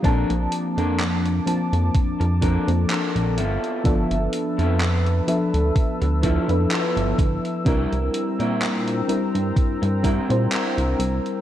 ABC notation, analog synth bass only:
X:1
M:4/4
L:1/16
Q:"Swing 16ths" 1/4=63
K:Gm
V:1 name="Analog synth bass" clef=bass
B,,, B,,, z F,,3 z F,, F,, F,,2 F,, z B,,, G,,, z | G,,, G,,, z F,,3 z D,, z D,,2 F,, z G,,, G,,, z | C,, C,, z B,,3 z G,, G,, G,,2 B,, z C,, C,, z |]